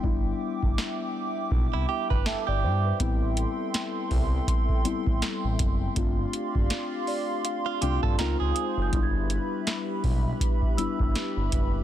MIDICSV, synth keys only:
0, 0, Header, 1, 2, 480
1, 0, Start_track
1, 0, Key_signature, 0, "major"
1, 0, Tempo, 740741
1, 24, Time_signature, 4, 2, 24, 8
1, 7670, End_track
2, 0, Start_track
2, 0, Title_t, "Synth keys"
2, 0, Program_c, 0, 88
2, 0, Control_c, 0, 64, 127
2, 0, Note_on_c, 0, 55, 87
2, 0, Note_on_c, 0, 59, 81
2, 0, Note_on_c, 0, 62, 83
2, 0, Note_on_c, 0, 64, 95
2, 20, Note_off_c, 0, 55, 0
2, 20, Note_on_c, 0, 55, 90
2, 26, Note_off_c, 0, 59, 0
2, 26, Note_on_c, 0, 59, 84
2, 30, Note_off_c, 0, 62, 0
2, 30, Note_on_c, 0, 62, 80
2, 35, Note_off_c, 0, 64, 0
2, 35, Note_on_c, 0, 64, 101
2, 666, Note_off_c, 0, 55, 0
2, 669, Note_off_c, 0, 59, 0
2, 671, Note_off_c, 0, 62, 0
2, 674, Note_off_c, 0, 64, 0
2, 1368, Note_on_c, 0, 79, 64
2, 1461, Note_off_c, 0, 79, 0
2, 1470, Note_on_c, 0, 76, 71
2, 1599, Note_off_c, 0, 76, 0
2, 1609, Note_on_c, 0, 74, 71
2, 1702, Note_off_c, 0, 74, 0
2, 1710, Note_on_c, 0, 72, 67
2, 1840, Note_off_c, 0, 72, 0
2, 1848, Note_on_c, 0, 71, 64
2, 1943, Note_on_c, 0, 55, 92
2, 1947, Note_on_c, 0, 59, 85
2, 1951, Control_c, 0, 64, 0
2, 1951, Note_on_c, 0, 60, 79
2, 1956, Note_on_c, 0, 64, 101
2, 2072, Control_c, 0, 64, 127
2, 2074, Note_off_c, 0, 71, 0
2, 2587, Note_off_c, 0, 55, 0
2, 2589, Note_off_c, 0, 59, 0
2, 2592, Note_off_c, 0, 60, 0
2, 2594, Note_off_c, 0, 64, 0
2, 3139, Note_on_c, 0, 55, 91
2, 3142, Note_on_c, 0, 59, 77
2, 3148, Note_on_c, 0, 60, 78
2, 3153, Note_on_c, 0, 64, 96
2, 3615, Note_off_c, 0, 55, 0
2, 3616, Note_off_c, 0, 59, 0
2, 3619, Note_off_c, 0, 60, 0
2, 3622, Note_off_c, 0, 64, 0
2, 3858, Note_on_c, 0, 57, 86
2, 3862, Note_on_c, 0, 60, 84
2, 3868, Note_on_c, 0, 62, 81
2, 3873, Control_c, 0, 64, 0
2, 3873, Note_on_c, 0, 65, 100
2, 3984, Control_c, 0, 64, 127
2, 4505, Note_off_c, 0, 57, 0
2, 4507, Note_off_c, 0, 60, 0
2, 4510, Note_off_c, 0, 62, 0
2, 4513, Note_off_c, 0, 65, 0
2, 4587, Note_on_c, 0, 74, 70
2, 4809, Note_off_c, 0, 74, 0
2, 4827, Note_on_c, 0, 77, 74
2, 5049, Note_off_c, 0, 77, 0
2, 5063, Note_on_c, 0, 57, 82
2, 5069, Note_on_c, 0, 60, 84
2, 5071, Note_on_c, 0, 79, 69
2, 5074, Note_on_c, 0, 62, 79
2, 5079, Note_on_c, 0, 65, 93
2, 5291, Note_off_c, 0, 79, 0
2, 5303, Note_off_c, 0, 57, 0
2, 5303, Note_off_c, 0, 60, 0
2, 5304, Note_on_c, 0, 56, 98
2, 5309, Note_off_c, 0, 62, 0
2, 5310, Note_on_c, 0, 60, 92
2, 5311, Note_off_c, 0, 65, 0
2, 5311, Control_c, 0, 64, 0
2, 5313, Note_on_c, 0, 79, 76
2, 5314, Note_on_c, 0, 63, 91
2, 5319, Note_on_c, 0, 65, 110
2, 5426, Control_c, 0, 64, 127
2, 5532, Note_off_c, 0, 79, 0
2, 5551, Note_on_c, 0, 80, 74
2, 5703, Note_off_c, 0, 56, 0
2, 5706, Note_off_c, 0, 60, 0
2, 5708, Note_off_c, 0, 63, 0
2, 5711, Note_off_c, 0, 65, 0
2, 5771, Note_off_c, 0, 80, 0
2, 5780, Note_on_c, 0, 55, 93
2, 5786, Note_on_c, 0, 59, 82
2, 5791, Note_on_c, 0, 62, 87
2, 5793, Control_c, 0, 64, 0
2, 5795, Note_on_c, 0, 64, 106
2, 5915, Control_c, 0, 64, 127
2, 6426, Note_off_c, 0, 55, 0
2, 6429, Note_off_c, 0, 59, 0
2, 6431, Note_off_c, 0, 62, 0
2, 6434, Note_off_c, 0, 64, 0
2, 6983, Note_on_c, 0, 55, 86
2, 6988, Note_on_c, 0, 59, 80
2, 6991, Note_on_c, 0, 62, 74
2, 6997, Note_on_c, 0, 64, 97
2, 7457, Note_off_c, 0, 55, 0
2, 7460, Note_off_c, 0, 59, 0
2, 7461, Note_off_c, 0, 62, 0
2, 7464, Note_off_c, 0, 64, 0
2, 7670, End_track
0, 0, End_of_file